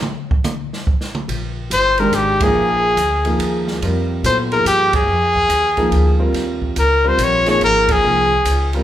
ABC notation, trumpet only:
X:1
M:3/4
L:1/8
Q:"Swing" 1/4=142
K:Bbmix
V:1 name="Trumpet"
z6 | z2 c B G A- | A4- A z | z2 c B G A- |
A4- A z | z2 B c _d d | B A4 z |]